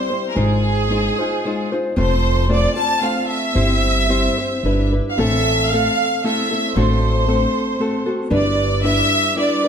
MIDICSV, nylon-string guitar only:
0, 0, Header, 1, 2, 480
1, 0, Start_track
1, 0, Tempo, 533808
1, 336, Time_signature, 3, 2, 24, 8
1, 5132, Tempo, 524017
1, 8772, End_track
2, 0, Start_track
2, 0, Title_t, "Nylon-string guitar"
2, 0, Program_c, 0, 24
2, 0, Note_on_c, 0, 55, 47
2, 0, Note_on_c, 0, 60, 46
2, 0, Note_on_c, 0, 64, 42
2, 92, Note_off_c, 0, 55, 0
2, 92, Note_on_c, 0, 72, 35
2, 93, Note_off_c, 0, 60, 0
2, 93, Note_off_c, 0, 64, 0
2, 103, Note_on_c, 0, 60, 32
2, 104, Note_on_c, 0, 64, 31
2, 112, Note_on_c, 0, 55, 28
2, 311, Note_off_c, 0, 55, 0
2, 314, Note_on_c, 0, 56, 49
2, 321, Note_off_c, 0, 60, 0
2, 322, Note_off_c, 0, 72, 0
2, 324, Note_off_c, 0, 64, 0
2, 325, Note_on_c, 0, 63, 58
2, 327, Note_on_c, 0, 65, 61
2, 333, Note_on_c, 0, 72, 57
2, 798, Note_off_c, 0, 56, 0
2, 804, Note_off_c, 0, 63, 0
2, 809, Note_on_c, 0, 56, 44
2, 814, Note_on_c, 0, 63, 46
2, 815, Note_off_c, 0, 65, 0
2, 819, Note_on_c, 0, 65, 55
2, 821, Note_off_c, 0, 72, 0
2, 825, Note_on_c, 0, 72, 51
2, 1055, Note_off_c, 0, 72, 0
2, 1065, Note_off_c, 0, 65, 0
2, 1066, Note_off_c, 0, 56, 0
2, 1066, Note_on_c, 0, 72, 46
2, 1069, Note_off_c, 0, 63, 0
2, 1076, Note_on_c, 0, 65, 46
2, 1081, Note_on_c, 0, 63, 43
2, 1297, Note_off_c, 0, 72, 0
2, 1300, Note_off_c, 0, 63, 0
2, 1302, Note_off_c, 0, 65, 0
2, 1304, Note_on_c, 0, 56, 51
2, 1311, Note_on_c, 0, 63, 56
2, 1316, Note_on_c, 0, 65, 62
2, 1316, Note_on_c, 0, 72, 55
2, 1536, Note_off_c, 0, 72, 0
2, 1541, Note_off_c, 0, 65, 0
2, 1547, Note_on_c, 0, 72, 43
2, 1549, Note_off_c, 0, 56, 0
2, 1551, Note_off_c, 0, 63, 0
2, 1551, Note_on_c, 0, 65, 39
2, 1561, Note_on_c, 0, 63, 33
2, 1762, Note_off_c, 0, 63, 0
2, 1764, Note_off_c, 0, 65, 0
2, 1764, Note_on_c, 0, 53, 71
2, 1766, Note_on_c, 0, 60, 74
2, 1768, Note_off_c, 0, 72, 0
2, 1768, Note_on_c, 0, 57, 69
2, 1774, Note_on_c, 0, 65, 69
2, 1779, Note_on_c, 0, 72, 80
2, 2225, Note_off_c, 0, 57, 0
2, 2233, Note_off_c, 0, 65, 0
2, 2236, Note_on_c, 0, 57, 50
2, 2239, Note_off_c, 0, 53, 0
2, 2241, Note_off_c, 0, 60, 0
2, 2244, Note_on_c, 0, 65, 59
2, 2245, Note_on_c, 0, 60, 50
2, 2249, Note_off_c, 0, 72, 0
2, 2253, Note_on_c, 0, 72, 54
2, 2471, Note_off_c, 0, 72, 0
2, 2475, Note_off_c, 0, 65, 0
2, 2476, Note_off_c, 0, 60, 0
2, 2482, Note_on_c, 0, 72, 43
2, 2486, Note_off_c, 0, 57, 0
2, 2486, Note_on_c, 0, 60, 40
2, 2486, Note_on_c, 0, 65, 40
2, 2702, Note_off_c, 0, 65, 0
2, 2704, Note_off_c, 0, 60, 0
2, 2708, Note_off_c, 0, 72, 0
2, 2708, Note_on_c, 0, 57, 47
2, 2712, Note_on_c, 0, 65, 53
2, 2715, Note_on_c, 0, 60, 46
2, 2719, Note_on_c, 0, 72, 52
2, 3177, Note_off_c, 0, 60, 0
2, 3188, Note_off_c, 0, 57, 0
2, 3188, Note_off_c, 0, 72, 0
2, 3188, Note_on_c, 0, 60, 61
2, 3191, Note_on_c, 0, 55, 62
2, 3193, Note_off_c, 0, 65, 0
2, 3197, Note_on_c, 0, 64, 67
2, 3199, Note_on_c, 0, 72, 65
2, 3666, Note_off_c, 0, 60, 0
2, 3667, Note_off_c, 0, 55, 0
2, 3677, Note_on_c, 0, 60, 49
2, 3678, Note_off_c, 0, 72, 0
2, 3678, Note_on_c, 0, 55, 58
2, 3687, Note_off_c, 0, 64, 0
2, 3689, Note_on_c, 0, 72, 57
2, 3690, Note_on_c, 0, 64, 57
2, 3929, Note_off_c, 0, 72, 0
2, 3931, Note_off_c, 0, 55, 0
2, 3931, Note_off_c, 0, 60, 0
2, 3934, Note_off_c, 0, 64, 0
2, 3940, Note_on_c, 0, 72, 48
2, 3945, Note_on_c, 0, 64, 40
2, 3958, Note_on_c, 0, 60, 36
2, 4168, Note_off_c, 0, 72, 0
2, 4171, Note_off_c, 0, 64, 0
2, 4173, Note_off_c, 0, 60, 0
2, 4177, Note_on_c, 0, 55, 45
2, 4177, Note_on_c, 0, 62, 45
2, 4187, Note_on_c, 0, 71, 52
2, 4190, Note_on_c, 0, 64, 51
2, 4416, Note_off_c, 0, 71, 0
2, 4422, Note_off_c, 0, 64, 0
2, 4425, Note_off_c, 0, 55, 0
2, 4425, Note_off_c, 0, 62, 0
2, 4427, Note_on_c, 0, 71, 37
2, 4433, Note_on_c, 0, 64, 37
2, 4441, Note_on_c, 0, 62, 31
2, 4651, Note_off_c, 0, 64, 0
2, 4654, Note_on_c, 0, 45, 54
2, 4655, Note_off_c, 0, 62, 0
2, 4656, Note_off_c, 0, 71, 0
2, 4658, Note_on_c, 0, 52, 57
2, 4659, Note_on_c, 0, 60, 61
2, 4661, Note_on_c, 0, 57, 63
2, 4662, Note_on_c, 0, 64, 66
2, 4668, Note_on_c, 0, 69, 69
2, 5134, Note_off_c, 0, 45, 0
2, 5136, Note_off_c, 0, 57, 0
2, 5137, Note_off_c, 0, 52, 0
2, 5139, Note_off_c, 0, 64, 0
2, 5139, Note_on_c, 0, 57, 42
2, 5143, Note_off_c, 0, 60, 0
2, 5147, Note_on_c, 0, 60, 53
2, 5156, Note_off_c, 0, 69, 0
2, 5160, Note_on_c, 0, 69, 54
2, 5616, Note_off_c, 0, 57, 0
2, 5619, Note_on_c, 0, 57, 47
2, 5621, Note_off_c, 0, 60, 0
2, 5625, Note_on_c, 0, 60, 47
2, 5626, Note_on_c, 0, 64, 45
2, 5627, Note_off_c, 0, 69, 0
2, 5630, Note_on_c, 0, 69, 53
2, 5856, Note_off_c, 0, 69, 0
2, 5861, Note_off_c, 0, 64, 0
2, 5867, Note_off_c, 0, 60, 0
2, 5867, Note_on_c, 0, 69, 38
2, 5870, Note_off_c, 0, 57, 0
2, 5872, Note_on_c, 0, 64, 39
2, 5878, Note_on_c, 0, 60, 32
2, 5883, Note_on_c, 0, 57, 31
2, 6091, Note_off_c, 0, 57, 0
2, 6091, Note_on_c, 0, 50, 55
2, 6092, Note_off_c, 0, 60, 0
2, 6093, Note_on_c, 0, 45, 51
2, 6094, Note_off_c, 0, 69, 0
2, 6099, Note_off_c, 0, 64, 0
2, 6101, Note_on_c, 0, 57, 61
2, 6103, Note_on_c, 0, 60, 58
2, 6105, Note_on_c, 0, 69, 60
2, 6107, Note_on_c, 0, 66, 66
2, 6549, Note_off_c, 0, 57, 0
2, 6560, Note_on_c, 0, 57, 47
2, 6562, Note_off_c, 0, 60, 0
2, 6562, Note_off_c, 0, 66, 0
2, 6566, Note_off_c, 0, 69, 0
2, 6571, Note_off_c, 0, 45, 0
2, 6573, Note_on_c, 0, 60, 49
2, 6573, Note_on_c, 0, 66, 49
2, 6577, Note_on_c, 0, 69, 56
2, 6601, Note_off_c, 0, 50, 0
2, 7031, Note_off_c, 0, 57, 0
2, 7033, Note_off_c, 0, 60, 0
2, 7042, Note_on_c, 0, 57, 45
2, 7044, Note_on_c, 0, 60, 51
2, 7045, Note_off_c, 0, 69, 0
2, 7047, Note_off_c, 0, 66, 0
2, 7056, Note_on_c, 0, 69, 56
2, 7058, Note_on_c, 0, 66, 54
2, 7275, Note_off_c, 0, 69, 0
2, 7276, Note_off_c, 0, 66, 0
2, 7281, Note_off_c, 0, 57, 0
2, 7286, Note_on_c, 0, 69, 43
2, 7287, Note_off_c, 0, 60, 0
2, 7287, Note_on_c, 0, 66, 43
2, 7292, Note_on_c, 0, 57, 36
2, 7298, Note_on_c, 0, 60, 39
2, 7505, Note_off_c, 0, 60, 0
2, 7508, Note_off_c, 0, 57, 0
2, 7508, Note_on_c, 0, 62, 65
2, 7511, Note_on_c, 0, 55, 61
2, 7517, Note_off_c, 0, 69, 0
2, 7520, Note_off_c, 0, 66, 0
2, 7521, Note_on_c, 0, 71, 68
2, 7524, Note_on_c, 0, 64, 66
2, 7989, Note_off_c, 0, 62, 0
2, 7994, Note_off_c, 0, 55, 0
2, 7998, Note_on_c, 0, 55, 49
2, 7999, Note_off_c, 0, 71, 0
2, 8000, Note_on_c, 0, 62, 50
2, 8003, Note_off_c, 0, 64, 0
2, 8006, Note_on_c, 0, 64, 49
2, 8010, Note_on_c, 0, 71, 51
2, 8472, Note_off_c, 0, 62, 0
2, 8477, Note_off_c, 0, 71, 0
2, 8479, Note_off_c, 0, 55, 0
2, 8483, Note_off_c, 0, 64, 0
2, 8483, Note_on_c, 0, 55, 47
2, 8483, Note_on_c, 0, 62, 52
2, 8487, Note_on_c, 0, 64, 57
2, 8488, Note_on_c, 0, 71, 48
2, 8724, Note_off_c, 0, 71, 0
2, 8735, Note_on_c, 0, 71, 41
2, 8737, Note_off_c, 0, 64, 0
2, 8739, Note_off_c, 0, 55, 0
2, 8740, Note_off_c, 0, 62, 0
2, 8772, Note_off_c, 0, 71, 0
2, 8772, End_track
0, 0, End_of_file